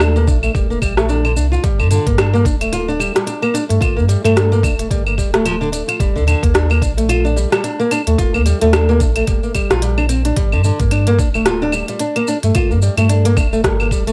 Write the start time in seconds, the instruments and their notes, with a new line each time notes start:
Already playing: sub bass D#2
0.00 nylon-string guitar D4, cross-stick, claves, shaker
0.16 nylon-string guitar A#3, shaker
0.27 sub bass A#1, nylon-string guitar D4, kick, shaker
0.43 nylon-string guitar A3, claves, shaker
0.55 sub bass D#1, nylon-string guitar G3, kick, shaker
0.70 nylon-string guitar A#3, shaker
0.82 sub bass A#1, nylon-string guitar G3, kick, claves, shaker
0.97 nylon-string guitar A3, cross-stick, shaker
1.09 nylon-string guitar D4, shaker
1.25 nylon-string guitar D3, claves, shaker
1.36 sub bass C2, nylon-string guitar D4, shaker
1.52 nylon-string guitar F4, shaker
1.63 sub bass G1, nylon-string guitar G3, kick, closed hi-hat, shaker
1.79 sub bass G2, nylon-string guitar D3, claves, shaker
1.91 nylon-string guitar D3, closed hi-hat, shaker
2.07 sub bass G2, nylon-string guitar A#3, kick, closed hi-hat, shaker
2.18 nylon-string guitar D4, cross-stick, closed hi-hat, claves, shaker
2.33 nylon-string guitar A#3, shaker
2.45 sub bass D1, nylon-string guitar D4, kick, closed hi-hat, shaker
2.61 nylon-string guitar A3, closed hi-hat, claves, shaker
2.73 nylon-string guitar F4, closed hi-hat, shaker
2.88 nylon-string guitar D4, shaker
3.00 nylon-string guitar G3, claves, shaker
3.15 nylon-string guitar G3, cross-stick, closed hi-hat, shaker
3.26 nylon-string guitar D4, closed hi-hat, shaker
3.42 nylon-string guitar A#3, claves, shaker
3.54 nylon-string guitar D4, closed hi-hat, shaker
3.69 sub bass G2, nylon-string guitar A3, closed hi-hat, shaker
3.81 sub bass G1, nylon-string guitar F4, kick, closed hi-hat, claves, shaker
3.97 sub bass G2, nylon-string guitar A#3, shaker
4.08 nylon-string guitar G3, closed hi-hat, shaker
4.24 sub bass G2, nylon-string guitar A3, closed hi-hat, claves, shaker
4.36 nylon-string guitar D4, cross-stick, closed hi-hat, shaker
4.52 nylon-string guitar A#3, shaker
4.63 sub bass D1, nylon-string guitar D4, kick, closed hi-hat, claves, shaker
4.79 nylon-string guitar A3, closed hi-hat, shaker
4.91 sub bass G1, nylon-string guitar G3, kick, closed hi-hat, shaker
5.07 nylon-string guitar A#3, claves, shaker
5.18 sub bass D1, nylon-string guitar G3, kick, shaker
5.34 nylon-string guitar A3, cross-stick, closed hi-hat, shaker
5.45 nylon-string guitar F3, closed hi-hat, claves, shaker
5.61 nylon-string guitar D3, shaker
5.72 nylon-string guitar D4, closed hi-hat, shaker
5.88 nylon-string guitar F4, closed hi-hat, claves, shaker
6.00 sub bass D#1, nylon-string guitar G3, kick, closed hi-hat, shaker
6.16 sub bass D#2, nylon-string guitar D3, shaker
6.27 nylon-string guitar D3, closed hi-hat, claves, shaker
6.43 sub bass D#2, nylon-string guitar A#3, kick, closed hi-hat, shaker
6.54 nylon-string guitar D4, cross-stick, closed hi-hat, shaker
6.70 nylon-string guitar A#3, claves, shaker
6.82 sub bass A#1, nylon-string guitar D4, kick, closed hi-hat, shaker
6.97 nylon-string guitar A3, closed hi-hat, shaker
7.09 nylon-string guitar F4, closed hi-hat, claves, shaker
7.25 nylon-string guitar D4, shaker
7.36 nylon-string guitar G3, shaker
7.52 nylon-string guitar G3, cross-stick, closed hi-hat, claves, shaker
7.64 nylon-string guitar D4, closed hi-hat, shaker
7.79 nylon-string guitar A#3, shaker
7.91 nylon-string guitar D4, closed hi-hat, claves, shaker
8.07 sub bass D#2, nylon-string guitar A3, closed hi-hat, shaker
8.18 sub bass D#1, nylon-string guitar F4, kick, closed hi-hat, shaker
8.34 sub bass D#2, nylon-string guitar A#3, claves, shaker
8.46 nylon-string guitar G3, closed hi-hat, shaker
8.61 sub bass D#2, nylon-string guitar A3, closed hi-hat, shaker
8.73 nylon-string guitar D4, cross-stick, closed hi-hat, claves, shaker
8.89 nylon-string guitar A#3, shaker
9.00 sub bass A#1, nylon-string guitar D4, kick, closed hi-hat, shaker
9.16 nylon-string guitar A3, closed hi-hat, claves, shaker
9.27 sub bass D#1, nylon-string guitar G3, kick, closed hi-hat, shaker
9.43 nylon-string guitar A#3, shaker
9.55 nylon-string guitar G3, kick, closed hi-hat, claves, shaker
9.70 sub bass A#1, nylon-string guitar F4, cross-stick, closed hi-hat, shaker
9.82 nylon-string guitar G3, closed hi-hat, shaker
9.98 nylon-string guitar D4, claves, shaker
10.09 nylon-string guitar C4, closed hi-hat, shaker
10.25 nylon-string guitar D4, closed hi-hat, shaker
10.36 sub bass G1, nylon-string guitar G3, kick, closed hi-hat, shaker
10.52 sub bass G2, nylon-string guitar D3, claves, shaker
10.64 nylon-string guitar D3, shaker
10.80 sub bass G2, nylon-string guitar A#3, kick, closed hi-hat, shaker
10.91 nylon-string guitar D4, closed hi-hat, claves, shaker
11.07 nylon-string guitar A#3, closed hi-hat, shaker
11.19 sub bass D1, nylon-string guitar D4, kick, shaker
11.34 nylon-string guitar A3, claves, shaker
11.46 nylon-string guitar F4, cross-stick, closed hi-hat, shaker
11.62 nylon-string guitar D4, shaker
11.72 nylon-string guitar G3, claves, shaker
11.88 nylon-string guitar G3, closed hi-hat, shaker
11.99 nylon-string guitar D4, closed hi-hat, shaker
12.16 nylon-string guitar A#3, closed hi-hat, claves, shaker
12.28 nylon-string guitar D4, shaker
12.43 sub bass G2, nylon-string guitar A3, closed hi-hat, shaker
12.55 sub bass G1, nylon-string guitar F4, kick, closed hi-hat, claves, shaker
12.70 sub bass G2, nylon-string guitar A#3, shaker
12.82 nylon-string guitar G3, shaker
12.97 sub bass G2, nylon-string guitar A3, closed hi-hat, claves, shaker
13.09 nylon-string guitar D4, closed hi-hat, shaker
13.25 nylon-string guitar A#3, closed hi-hat, shaker
13.37 sub bass D1, nylon-string guitar D4, kick, claves, shaker
13.53 nylon-string guitar A3, shaker
13.64 sub bass G1, nylon-string guitar G3, kick, cross-stick, closed hi-hat, shaker
13.80 nylon-string guitar A#3, claves, shaker
13.91 sub bass D1, nylon-string guitar G3, kick, shaker
14.07 nylon-string guitar A3, closed hi-hat, shaker